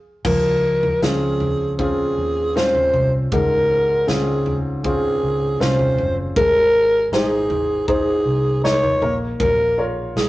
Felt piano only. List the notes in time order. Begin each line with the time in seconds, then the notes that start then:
0.24 F3
1.02 C4 C#4 F4
1.78 C4 C#4 F4
2.56 C4 C#4 F4
3.32 G#2
4.07 C4 C#4 F4
4.84 C4 C#4 F4
5.60 C4 C#4 F4
6.36 G#3
7.12 D#4 G#4 C5
7.87 D#4 G#4 C5
8.64 D#4 G#4 D#5
9.02 A#3
9.78 F4 A#4 C#5